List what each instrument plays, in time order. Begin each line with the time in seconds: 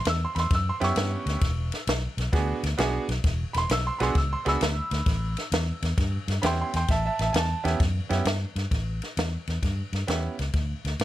0.05 fingered electric bass E2, snare, ride
0.09 upright piano E6
0.25 upright piano C6
0.35 fingered electric bass E2, upright piano B5, snare, ride
0.40 upright piano C6
0.51 fingered electric bass F#2, kick, snare, ride
0.55 upright piano E6
0.69 upright piano C6
0.80 fingered electric bass F#2, upright piano B3 C#4 E4 G4, snare, ride
0.84 upright piano C#6
0.96 fingered electric bass G2, snare, ride
1.26 fingered electric bass D2, snare, ride
1.41 fingered electric bass E1, kick, snare, ride
1.72 snare, ride
1.87 fingered electric bass B1, snare, ride
2.17 fingered electric bass B1, snare, ride
2.33 fingered electric bass D2, upright piano B3 D4 F#4 G#4, kick, snare, ride
2.63 fingered electric bass D2, snare, ride
2.78 fingered electric bass B1, upright piano B3 D4 F#4 G#4, snare, ride
3.09 fingered electric bass B1, snare, ride
3.24 fingered electric bass E1, kick, snare, ride
3.53 fingered electric bass E1, upright piano B5, snare, ride
3.58 upright piano C6
3.69 fingered electric bass B1, upright piano E6, snare, ride
3.87 upright piano C6
3.98 fingered electric bass B1, upright piano B3 D4 F#4 G#4 B5, snare, ride
4.03 upright piano C6
4.15 fingered electric bass C#2, upright piano E6, kick, snare, ride
4.33 upright piano C6
4.45 fingered electric bass C#2, upright piano B3 D4 F#4 G#4 B5 E6, snare, ride
4.61 fingered electric bass D2, snare, ride
4.91 fingered electric bass D2, snare, ride
5.06 fingered electric bass A1, kick, snare, ride
5.37 snare, ride
5.52 fingered electric bass E2, snare, ride
5.82 fingered electric bass E2, snare, ride
5.98 fingered electric bass G2, kick, snare, ride
6.28 fingered electric bass G2, snare, ride
6.42 fingered electric bass E2, upright piano B3 C#4 E4 G4 G5 B5, snare, ride
6.46 upright piano C6
6.61 upright piano G5 C6
6.73 fingered electric bass E2, upright piano G5 C6, snare, ride
6.88 fingered electric bass A1, upright piano E5 A5, kick, snare, ride
7.06 upright piano E5 A5
7.19 fingered electric bass A1, upright piano E5 A5, snare, ride
7.33 fingered electric bass E2, upright piano G#5, snare, ride
7.37 upright piano A5
7.64 fingered electric bass E2, upright piano B3 C#4 E4 G4, snare, ride
7.80 fingered electric bass F#2, kick, snare, ride
8.09 fingered electric bass F#2, upright piano B3 C#4 E4 G4, snare, ride
8.25 fingered electric bass G2, snare, ride
8.56 fingered electric bass G2, snare, ride
8.71 fingered electric bass A1, kick, snare, ride
9.02 snare, ride
9.17 fingered electric bass E2, snare, ride
9.47 fingered electric bass E2, snare, ride
9.62 fingered electric bass G2, kick, snare, ride
9.93 fingered electric bass G2, snare, ride
10.07 fingered electric bass E2, upright piano B3 C#4 E4 G4, snare, ride
10.39 fingered electric bass C#2, snare, ride
10.53 fingered electric bass D2, kick, snare, ride
10.85 fingered electric bass D2, snare, ride
10.99 fingered electric bass A2, snare, ride